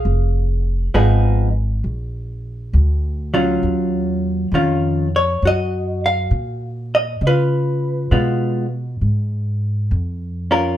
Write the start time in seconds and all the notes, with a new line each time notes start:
Already playing: G#4 F5
0.05 F1
0.94 G#1 F3 B3 D#4 G#4
1.84 A#1
2.73 D2
3.34 F#3 C#4 F4
3.63 D#2
4.52 F2 D#3 C#4 F4
5.16 C#5
5.42 F#2 F#4
5.47 D#5
6.06 F5
6.31 A#2
6.95 D#5
7.21 C#3
7.27 F4 B4
8.11 B2 G#3 B3 F4
9.01 G#2
9.91 F2
10.51 C#4 F4 A#4